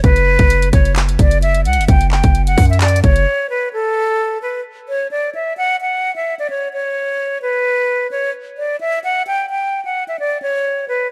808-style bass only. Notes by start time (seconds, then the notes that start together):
0.04 F#1
0.39 F#1
0.73 F#1
1.19 F#1
1.65 C#2
1.78 F#1
1.88 F#1
2.24 F#1
2.58 F#2
3.04 F#1